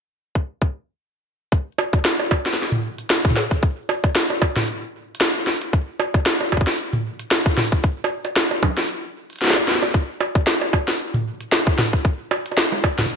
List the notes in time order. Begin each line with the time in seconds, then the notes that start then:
0.35 kick
0.62 kick
1.52 kick, closed hi-hat
1.78 high bongo
1.93 kick, closed hi-hat, high bongo
2.05 snare, closed hi-hat
2.19 high bongo
2.31 kick, high bongo
2.46 snare, closed hi-hat
2.54 snare
2.62 snare
2.72 mid tom
2.98 closed hi-hat
3.10 snare, closed hi-hat
3.25 kick
3.30 mid tom
3.36 snare
3.51 kick, open hi-hat
3.63 kick, closed hi-hat
3.89 high bongo
4.04 kick, closed hi-hat, high bongo
4.15 snare, closed hi-hat
4.30 high bongo
4.42 kick, high bongo
4.56 snare, closed hi-hat, mid tom
4.68 closed hi-hat
5.15 closed hi-hat
5.21 snare, closed hi-hat
5.47 snare, open hi-hat
5.62 closed hi-hat
5.73 kick, closed hi-hat
6.00 high bongo
6.14 kick, closed hi-hat, high bongo
6.26 snare, closed hi-hat
6.41 high bongo
6.52 kick, high bongo
6.57 kick
6.61 kick
6.67 snare, closed hi-hat
6.78 closed hi-hat
6.93 mid tom
7.19 closed hi-hat
7.31 snare, closed hi-hat
7.46 kick
7.57 snare, mid tom
7.72 kick, open hi-hat
7.84 kick, closed hi-hat
8.04 high bongo
8.25 closed hi-hat, high bongo
8.36 snare, closed hi-hat
8.51 high bongo
8.63 kick, high bongo
8.77 snare, closed hi-hat
8.89 closed hi-hat
9.30 closed hi-hat
9.33 closed hi-hat
9.36 closed hi-hat
9.39 snare, closed hi-hat
9.42 snare, closed hi-hat
9.45 snare, closed hi-hat
9.49 snare, closed hi-hat
9.53 snare, closed hi-hat, high bongo
9.68 snare, open hi-hat
9.72 snare
9.75 snare
9.79 snare
9.83 snare, high bongo
9.85 snare
9.88 snare
9.91 kick, snare, closed hi-hat
10.20 high bongo
10.35 kick, closed hi-hat, high bongo
10.47 snare, closed hi-hat
10.62 high bongo
10.73 kick, high bongo
10.88 snare, closed hi-hat
10.99 closed hi-hat
11.14 mid tom
11.41 closed hi-hat
11.52 snare, closed hi-hat
11.67 kick
11.78 snare, mid tom
11.93 kick, open hi-hat
12.05 kick, closed hi-hat
12.31 high bongo
12.46 closed hi-hat
12.52 high bongo
12.57 snare, closed hi-hat
12.72 high bongo
12.84 kick, high bongo
12.98 snare, closed hi-hat, mid tom
13.01 mid tom
13.06 closed hi-hat, mid tom